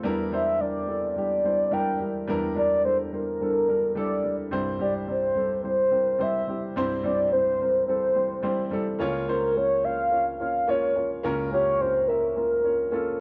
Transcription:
0.03 E2 E3 G3 D4 E4 A#4
0.32 G3 D4 E4 C5 E5
0.59 G3 D4 E4 A#4 D5
0.87 G3 D4 E4 A4
1.16 G3 D4 E4 G4 D5
1.44 G3 D4 E4 C5
1.71 G3 D4 E4 A#4 G5
2.00 G3 D4 E4 A#4
2.27 E2 E3 G3 D4 E4 A#4
2.55 G3 D4 E4 A#4 D5
2.84 G3 D4 E4 A4 C5
3.12 G3 D4 E4 A#4 C5
3.40 G3 D4 E4 A4
3.68 G3 D4 E4 A#4
3.95 G3 D4 E4 A4 D5
4.24 G3 D4 E4 A4
4.51 C2 G2 G3 C4 E4 C5
4.78 G3 C4 E4 G4 D5
5.07 G3 C4 E4 C5 D5
5.35 G3 C4 E4 A4
5.63 G3 C4 E4 C5
5.91 G3 C4 E4 A#4
6.19 G3 C4 E4 C5 E5
6.48 G3 C4 E4 G4
6.76 C2 G2 G3 C4 E4 C5
7.03 G3 C4 E4 C5 D5
7.31 G3 C4 E4 C5
7.59 G3 C4 E4 A#4
7.87 G3 C4 E4 A4 C5
8.15 G3 C4 E4 C5
8.42 G3 C4 E4 C5
8.71 G3 C4 E4 A4
8.99 C#2 C#3 A#3 C#4 F4 C#5
9.28 A#3 C#4 F4 A#4 C5
9.56 A#3 C#4 F4 C#5
9.84 A#3 C#4 F4 C#5 F5
10.11 A#3 C#4 F4 C#5
10.40 A#3 C#4 F4 C#5 F5
10.67 A#3 C#4 F4 C#5
10.95 A#3 C#4 F4 C#5
11.23 C#2 C#3 A#3 C#4 F4 A#4
11.51 A#3 C#4 F4 G4 C#5
11.80 A#3 C#4 F4 C5 C#5
12.08 A#3 C#4 F4 A#4 E5
12.36 A#3 C#4 F4 A#4
12.63 A#3 C#4 F4 C#5
12.91 A#3 C#4 F4 A4

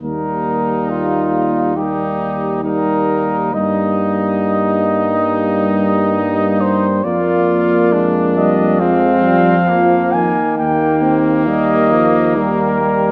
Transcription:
0.02 D#2 G3 A#3 D#4 A#4
0.90 F4
1.76 G3 A#3 D#4 G4
2.63 G3 A#3 D#4 A#4
3.54 G2 G3 A#3 D#4 D#5
6.61 C5
7.04 F2 A#3 F4 D5
7.93 G#3 D4
8.37 G3 D#5
8.80 F3 G#3 C4 F5
9.25 G3
9.69 F3 A#3
10.13 D#3 G#5
10.58 D#2 A#3 G5
11.02 C4
11.46 G3 A#3 D#5
11.92 F3
12.36 D#3 G3 A#4
12.80 G3

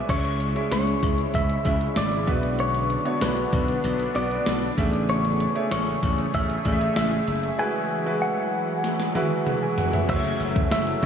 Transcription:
Already playing: G#3 D4 E4 G#4 B4 D5 E5 G#5 B5 C#6
0.09 C#2 C#3 G#3 C#4 E4 C#5, kick, closed hi-hat, crash
0.25 closed hi-hat
0.40 closed hi-hat
0.55 G#3 C#4 E4 E5, closed hi-hat
0.71 C#2 C#5, snare, closed hi-hat
0.87 closed hi-hat
1.03 C#2, kick, closed hi-hat
1.18 closed hi-hat
1.34 C#2 E5, kick, closed hi-hat
1.49 closed hi-hat
1.65 C#2 C#3 G#3 E4 E5, kick, closed hi-hat
1.81 closed hi-hat
1.96 G#1 D5, snare, closed hi-hat
2.12 closed hi-hat
2.27 B1 D3 B3 D4 F#4 B4, kick, closed hi-hat
2.43 closed hi-hat
2.59 C#5, closed hi-hat
2.74 closed hi-hat
2.90 closed hi-hat
3.05 B3 D4 F#4 C#5, closed hi-hat
3.21 B1 B4, snare, closed hi-hat
3.37 closed hi-hat
3.53 B1, kick, closed hi-hat
3.68 closed hi-hat
3.84 B1, closed hi-hat
3.99 closed hi-hat
4.15 B1 B3 D4 F#4 B4 D5, closed hi-hat
4.22 D5
4.31 closed hi-hat
4.46 B1, snare, closed hi-hat
4.62 closed hi-hat
4.77 A1 C#3 A3 E4 G#4 E5, kick, closed hi-hat
4.93 closed hi-hat
5.09 C#5, closed hi-hat
5.25 closed hi-hat
5.40 closed hi-hat
5.55 A3 E4 G#4 C#5, closed hi-hat
5.71 A1 C#5, snare, closed hi-hat
5.87 closed hi-hat
6.03 A1, kick, closed hi-hat
6.18 closed hi-hat
6.34 A1 E5, kick, closed hi-hat
6.50 closed hi-hat
6.65 A1 A3 E4 G#4 D5, kick, closed hi-hat
6.72 E5
6.81 closed hi-hat
6.96 A1 E5, snare, closed hi-hat
7.12 closed hi-hat
7.28 F#1, closed hi-hat
7.43 closed hi-hat
7.58 E3 F#3 G#3 E4 F#4 B4 G#5
8.05 F#3 E4 F#4 B4
8.12 G#3
8.22 F#5
8.84 snare
9.00 snare
9.15 G#3 E4 F#4 B4, high tom
9.47 mid tom
9.62 B4 G#5
9.78 F#5, floor tom
9.93 G#4 E5, floor tom
10.09 F#1 F#3 A3 C#4 E4 F#4 A4 C5 E5, kick, closed hi-hat, crash
10.16 C#5
10.25 closed hi-hat
10.40 F#1, closed hi-hat
10.56 kick, closed hi-hat
10.71 F#1 E5, snare, closed hi-hat, tambourine
10.87 F#3 E4 A4, closed hi-hat
11.02 F#2 A3 C#4 E4, kick, closed hi-hat

